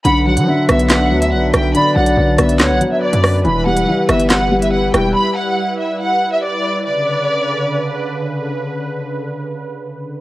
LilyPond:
<<
  \new Staff \with { instrumentName = "Violin section" } { \time 4/4 \key b \minor \tempo 4 = 141 b''8 fis''4 e''8 fis''8. e''16 fis''8 g''8 | b''8 fis''4 e''8 fis''8. e''16 d''4 | b''8 fis''4 e''8 fis''8. e''16 fis''8 g''8 | b''8 fis''4 e''8 fis''8. e''16 d''4 |
d''2. r4 | r1 | }
  \new Staff \with { instrumentName = "Flute" } { \time 4/4 \key b \minor fis''4 e''2. | d''2 cis''4 r4 | r1 | r1 |
r1 | r1 | }
  \new Staff \with { instrumentName = "Analog synth pad" } { \time 4/4 \key b \minor << { b'1~ | b'1~ | b'1~ | b'1 |
<cis d b'>1~ | <cis d b'>1 | } \\ { <d d'>1~ | <d d'>1 | <g e'>1~ | <g e'>1 |
r1 | r1 | } >> }
  \new Staff \with { instrumentName = "Grand piano" } { \clef bass \time 4/4 \key b \minor d8 fis8 d8 b4 fis4. | d8 fis8 d8 b4 fis4. | e8 g8 e8 b4 g4.~ | g4 r2. |
r1 | r1 | }
  \new Staff \with { instrumentName = "808-style bass" } { \clef bass \time 4/4 \key b \minor b,,8. fis16 r8 b,,4 d,8 b,,8 b,,8 | r8 b,,8 b,,8 b,,8 d,16 b,,16 r8. fis,8. | e,,4 r8 g,,2 e,,8 | r1 |
r1 | r1 | }
  \new DrumStaff \with { instrumentName = "Drums" } \drummode { \time 4/4 hh8. hh16 r8 <hh ss>16 hh16 <hc hh sn>8. hh16 r8 <hh ss>8 | hh8. hh16 r8 <hh ss>16 hh16 <hc hh sn>8 hh8 r16 hh16 <hho ss>8 | hh8. hh16 r8 <hh ss>16 hh16 <hc hh sn>8. hh16 r8 <hh ss>8 | r4 r4 r4 r4 |
r4 r4 r4 r4 | r4 r4 r4 r4 | }
>>